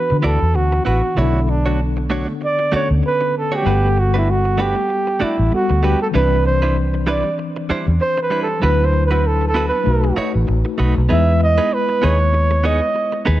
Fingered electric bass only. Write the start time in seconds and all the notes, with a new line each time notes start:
0.12 D3
0.24 D2
0.42 E2
0.55 D2
0.87 A1
1.18 B1
2.73 muted fingered electric bass stroke
2.91 D2
3.66 G1
5.22 muted fingered electric bass stroke
5.39 A1
5.70 D2
6.15 C2
7.70 muted fingered electric bass stroke
7.88 E2
8.63 D2
9.87 B1
10.17 muted fingered electric bass stroke
10.35 A1
10.49 A1
10.80 B1
10.98 B1
11.11 E2
12.04 D#2
13.28 D#2